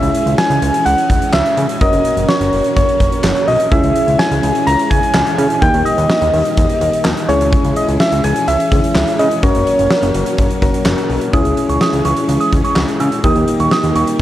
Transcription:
Already playing: string machine E3 G#3 C#4, synth keys C#4 E4 G#4, soft synth lead E5
0.02 analog synth bass C#2, closed hi-hat
0.15 closed hi-hat
0.26 analog synth bass C#2, closed hi-hat
0.38 soft synth lead G#5, snare
0.50 analog synth bass C#2, closed hi-hat
0.62 analog synth bass C#2, closed hi-hat
0.74 closed hi-hat
0.86 analog synth bass C#2, soft synth lead F#5, closed hi-hat
0.98 closed hi-hat
1.10 analog synth bass C#2, kick, closed hi-hat
1.22 closed hi-hat
1.33 analog synth bass C#2, soft synth lead E5, snare, clap
1.46 closed hi-hat
1.57 analog synth bass C#3, closed hi-hat
1.69 closed hi-hat
1.81 analog synth bass F#1, string machine F#3 A#3, synth keys C#4 F#4 A#4, soft synth lead D#5, kick, closed hi-hat
1.93 analog synth bass F#1, closed hi-hat
2.05 closed hi-hat
2.17 analog synth bass F#1, closed hi-hat
2.29 soft synth lead C#5, snare
2.41 analog synth bass F#1, closed hi-hat
2.53 analog synth bass F#1, open hi-hat
2.64 closed hi-hat
2.76 analog synth bass F#1, soft synth lead C#5, kick, closed hi-hat
2.89 closed hi-hat
3.00 analog synth bass F#1, kick, closed hi-hat
3.12 closed hi-hat
3.24 analog synth bass F#1, snare, clap
3.36 closed hi-hat
3.48 analog synth bass B1, soft synth lead D#5, open hi-hat
3.60 closed hi-hat
3.71 analog synth bass C#2, string machine E3 G#3 C#4, synth keys C#4 E4 G#4, soft synth lead E5, kick, closed hi-hat
3.83 analog synth bass C#2, closed hi-hat
3.96 closed hi-hat
4.07 analog synth bass C#2, closed hi-hat
4.19 soft synth lead G#5, snare
4.31 analog synth bass C#2, closed hi-hat
4.43 analog synth bass C#2, closed hi-hat
4.55 closed hi-hat
4.67 analog synth bass C#2, soft synth lead A#5, closed hi-hat
4.79 closed hi-hat
4.90 analog synth bass C#2, soft synth lead G#5, kick, closed hi-hat
5.03 closed hi-hat
5.14 analog synth bass C#2, snare, clap
5.26 closed hi-hat
5.38 analog synth bass C#3, synth keys C#4 E4 G#4, closed hi-hat
5.50 closed hi-hat
5.62 analog synth bass D#2, string machine D#3 G3 A#3, synth keys A#3 D#4 G4, soft synth lead G5, kick, closed hi-hat
5.74 analog synth bass D#2, closed hi-hat
5.85 soft synth lead D#5, closed hi-hat
5.98 analog synth bass D#2, closed hi-hat
6.10 snare
6.22 analog synth bass D#2, closed hi-hat
6.33 analog synth bass D#2, open hi-hat
6.45 closed hi-hat
6.57 analog synth bass D#2, kick, closed hi-hat
6.69 closed hi-hat
6.81 analog synth bass D#2, closed hi-hat
6.93 closed hi-hat
7.05 analog synth bass D#2, snare, clap
7.17 closed hi-hat
7.29 analog synth bass C#2, string machine E3 G#3 C#4, synth keys C#4 E4 G#4, soft synth lead C#5, closed hi-hat
7.41 closed hi-hat
7.53 kick, closed hi-hat
7.64 analog synth bass C#2, closed hi-hat
7.76 soft synth lead D#5, closed hi-hat
7.88 analog synth bass C#2, closed hi-hat
8.00 soft synth lead E5, snare
8.12 analog synth bass C#2, closed hi-hat
8.24 analog synth bass C#2, soft synth lead G#5, closed hi-hat
8.36 closed hi-hat
8.48 analog synth bass C#2, soft synth lead E5, closed hi-hat
8.60 closed hi-hat
8.72 analog synth bass C#2, synth keys C#4 E4 G#4, kick, closed hi-hat
8.84 closed hi-hat
8.95 analog synth bass C#2, snare, clap
9.07 closed hi-hat
9.19 analog synth bass C#3, soft synth lead D#5, closed hi-hat
9.31 closed hi-hat
9.43 analog synth bass F#1, string machine F#3 A#3, synth keys C#4 F#4 A#4, soft synth lead C#5, kick, closed hi-hat
9.55 analog synth bass F#1, closed hi-hat
9.67 closed hi-hat
9.79 analog synth bass F#1, closed hi-hat
9.91 snare
10.03 analog synth bass F#1, closed hi-hat
10.14 analog synth bass F#1, closed hi-hat
10.26 closed hi-hat
10.38 analog synth bass F#1, kick, closed hi-hat
10.50 closed hi-hat
10.62 analog synth bass F#1, synth keys C#4 F#4 A#4, kick, closed hi-hat
10.74 closed hi-hat
10.86 analog synth bass F#1, snare, clap
10.98 closed hi-hat
11.09 analog synth bass B1, open hi-hat
11.21 closed hi-hat
11.33 analog synth bass C#2, string machine E3 G#3 C#4, synth keys C#4 E4 G#4, synth bell D#6, kick, closed hi-hat
11.45 analog synth bass C#2, closed hi-hat
11.57 closed hi-hat
11.69 analog synth bass C#2, synth bell C#6, closed hi-hat
11.81 synth bell D#6, snare
11.93 analog synth bass C#2, closed hi-hat
12.05 analog synth bass C#2, synth bell C#6, closed hi-hat
12.17 closed hi-hat
12.29 analog synth bass C#2, closed hi-hat
12.40 synth bell D#6, closed hi-hat
12.53 analog synth bass C#2, kick, closed hi-hat
12.64 synth bell C#6, closed hi-hat
12.76 analog synth bass C#2, snare, clap
12.88 closed hi-hat
13.00 analog synth bass C#3, synth bell E6, closed hi-hat
13.12 closed hi-hat
13.24 analog synth bass D#2, string machine D#3 G3 A#3, synth keys A#3 D#4 G4, synth bell D#6, kick, closed hi-hat
13.36 analog synth bass D#2, closed hi-hat
13.48 closed hi-hat
13.60 analog synth bass D#2, synth bell C#6, closed hi-hat
13.71 synth bell D#6, snare
13.83 analog synth bass D#2, closed hi-hat
13.95 analog synth bass D#2, synth bell C#6, closed hi-hat
14.07 closed hi-hat

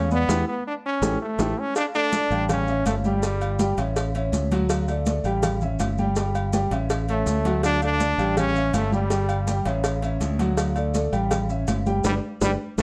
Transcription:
Already playing: fingered electric bass E2
0.11 grand piano B3 B4 D5, trombone B3, high conga, maracas
0.28 fingered electric bass E2, grand piano E4 G4 B4, cowbell, high conga, high timbale, maracas
0.48 trombone B3
0.67 trombone D4
0.86 trombone C#4
1.02 fingered electric bass A1, grand piano E4 G4 A4, cowbell, high conga, high timbale, maracas
1.22 trombone A3
1.39 fingered electric bass A1, grand piano E4 G4 A4, cowbell, high conga, high timbale, maracas
1.59 trombone C#4
1.76 trombone D4, cowbell, high conga, low agogo, maracas
1.94 grand piano A3 A4 D5, trombone D4, high conga, low agogo, maracas
2.12 grand piano A3 A4 D5, cowbell, high conga, maracas
2.30 fingered electric bass A1, grand piano G3 G4 G5, high conga, low agogo, maracas
2.49 trombone C#4, cowbell, high conga, low conga, low agogo, maracas
2.68 grand piano C#4 C#5 E5, high conga, maracas
2.86 fingered electric bass G1, trombone A3, cowbell, high conga, low timbale, low agogo, maracas
3.04 grand piano G3 G4 G5, trombone G3, high conga, maracas
3.23 grand piano G3 G4 G5, cowbell, low agogo, maracas
3.41 high conga, low agogo, maracas
3.59 grand piano G3 G4 G5, cowbell, high conga, maracas
3.78 fingered electric bass A1, grand piano C#4 C#5 E5, cowbell, high conga, low agogo, maracas
3.96 cowbell, high conga, low agogo, maracas
4.15 grand piano C#4 C#5 E5, high conga, low agogo, maracas
4.32 fingered electric bass D2, cowbell, high conga, maracas
4.51 grand piano F#3 F#4 F#5, cowbell, high conga, low agogo, maracas
4.69 cowbell, low agogo, maracas
4.88 grand piano A3 A4 D5, high conga, low agogo, maracas
5.06 grand piano A3 A4 D5, cowbell, high conga, maracas
5.24 fingered electric bass A1, grand piano G3 G4 G5, high conga, low agogo, maracas
5.43 cowbell, high conga, low conga, low agogo, maracas
5.61 grand piano C#4 C#5 E5, high conga, low conga, maracas
5.79 fingered electric bass G1, cowbell, high conga, low timbale, low agogo, maracas
5.98 grand piano G3 G4 G5, high conga, maracas
6.16 grand piano G3 G4 G5, cowbell, high conga, low agogo, maracas
6.35 high conga, low agogo, maracas
6.53 grand piano G3 G4 G5, cowbell, high conga, maracas
6.71 fingered electric bass A1, grand piano C#4 C#5 E5, cowbell, high conga, low agogo, maracas
6.90 cowbell, high conga, low agogo, maracas
7.08 trombone A3, grand piano C#4 C#5 E5, high conga, low agogo, maracas
7.26 fingered electric bass D2, cowbell, high conga, maracas
7.45 grand piano F#3 F#4 F#5, cowbell, high conga, low agogo, maracas
7.63 trombone D4, cowbell, high conga, low agogo, maracas
7.82 grand piano A3 A4 D5, trombone D4, high conga, low agogo, maracas
8.00 grand piano A3 A4 D5, cowbell, high conga, maracas
8.18 fingered electric bass A1, grand piano G3 G4 G5, low agogo, maracas
8.37 trombone C#4, cowbell, high conga, low conga, low agogo, maracas
8.55 grand piano C#4 C#5 E5, high conga, maracas
8.73 fingered electric bass G1, trombone A3, cowbell, high conga, low agogo, maracas
8.92 grand piano G3 G4 G5, trombone G3, high conga, maracas
9.10 grand piano G3 G4 G5, cowbell, high conga, low agogo, maracas
9.29 high conga, low agogo, maracas
9.47 grand piano G3 G4 G5, cowbell, high conga, maracas
9.65 fingered electric bass A1, grand piano C#4 C#5 E5, cowbell, high conga, low agogo, maracas
9.84 cowbell, high conga, low agogo, maracas
10.02 grand piano C#4 C#5 E5, high conga, low agogo, maracas
10.20 fingered electric bass D2, cowbell, high conga, maracas
10.39 grand piano F#3 F#4 F#5, cowbell, high conga, low agogo, maracas
10.57 cowbell, high conga, low agogo, maracas
10.76 grand piano A3 A4 D5, high conga, low agogo, maracas
10.94 grand piano A3 A4 D5, cowbell, high conga, maracas
11.12 fingered electric bass A1, grand piano G3 G4 G5, high conga, low agogo, maracas
11.31 cowbell, high conga, low conga, low agogo, maracas
11.49 grand piano C#4 C#5 E5, high conga, maracas
11.68 fingered electric bass G1, cowbell, high conga, low timbale, low agogo, maracas
11.86 grand piano G3 G4 G5, high conga, maracas
12.04 fingered electric bass G1, trombone G3, grand piano D4 G4 B4, cowbell, high conga, high timbale, maracas
12.41 fingered electric bass G1, trombone G3, grand piano D4 G4 B4, cowbell, high conga, high timbale, maracas
12.78 fingered electric bass A1, grand piano E4 G4 A4, cowbell, high conga, high timbale, maracas

